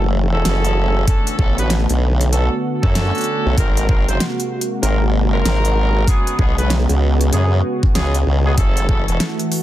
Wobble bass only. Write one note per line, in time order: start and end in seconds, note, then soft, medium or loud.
0.00 0.25 F#1 medium
0.25 0.43 F1 medium
0.45 1.06 F#1 medium
1.39 1.86 A1 medium
1.89 2.49 B1 loud
2.83 3.11 F#2 medium
3.46 3.56 B1 loud
3.58 4.05 G#1 loud
4.08 4.18 F#1 loud
4.82 5.25 G#1 loud
5.25 5.43 G1 loud
5.45 6.05 G#1 medium
6.39 6.86 B1 medium
6.89 7.30 C#2 loud
7.32 7.62 F#2 loud
7.95 8.24 C#2 medium
8.26 8.56 C#2 medium
8.57 9.05 F#1 loud
9.08 9.18 E1 loud